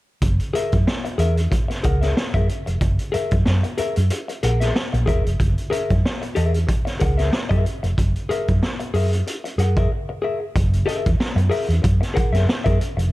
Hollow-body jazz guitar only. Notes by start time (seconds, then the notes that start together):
0.53 G#4 A#4 E5
1.05 muted hollow-body jazz guitar stroke
1.18 G#4 A#4 E5
1.37 muted hollow-body jazz guitar stroke
1.51 muted hollow-body jazz guitar stroke
1.68 muted hollow-body jazz guitar stroke
1.83 G#4 A#4 F#5
2.01 G#4 A#4 E5
2.16 muted hollow-body jazz guitar stroke
2.34 G#4 A#4 E5
2.49 muted hollow-body jazz guitar stroke
2.66 muted hollow-body jazz guitar stroke
3.12 G#4 A#4 E5
3.63 muted hollow-body jazz guitar stroke
3.78 G#4 A#4 E5
3.96 muted hollow-body jazz guitar stroke
4.11 muted hollow-body jazz guitar stroke
4.28 muted hollow-body jazz guitar stroke
4.43 G#4 A#4 F#5
4.60 G#4 A#4 E5
4.74 muted hollow-body jazz guitar stroke
4.93 muted hollow-body jazz guitar stroke
5.06 G#4 A#4 E5
5.25 muted hollow-body jazz guitar stroke
5.70 G#4 A#4 E5
6.22 muted hollow-body jazz guitar stroke
6.35 G#4 A#4 E5
6.53 muted hollow-body jazz guitar stroke
6.67 muted hollow-body jazz guitar stroke
6.85 muted hollow-body jazz guitar stroke
7.00 G#4 A#4 F#5
7.18 G#4 A#4 E5
7.31 muted hollow-body jazz guitar stroke
7.49 G#4 A#4 E5
7.65 muted hollow-body jazz guitar stroke
7.83 muted hollow-body jazz guitar stroke
8.29 G#4 A#4 E5
8.80 muted hollow-body jazz guitar stroke
8.94 G#4 A#4 E5
9.12 muted hollow-body jazz guitar stroke
9.27 muted hollow-body jazz guitar stroke
9.44 muted hollow-body jazz guitar stroke
9.58 G#4 A#4 F#5
9.77 G#4 A#4 E5
9.91 muted hollow-body jazz guitar stroke
10.09 muted hollow-body jazz guitar stroke
10.22 G#4 A#4 E5
10.40 muted hollow-body jazz guitar stroke
10.86 G#4 A#4 E5
11.36 muted hollow-body jazz guitar stroke
11.50 G#4 A#4 E5
11.68 muted hollow-body jazz guitar stroke
11.82 muted hollow-body jazz guitar stroke
12.01 muted hollow-body jazz guitar stroke
12.14 G#4 A#4 F#5
12.33 G#4 A#4 E5
12.47 muted hollow-body jazz guitar stroke
12.64 G#4 A#4 E5
12.79 muted hollow-body jazz guitar stroke
12.97 muted hollow-body jazz guitar stroke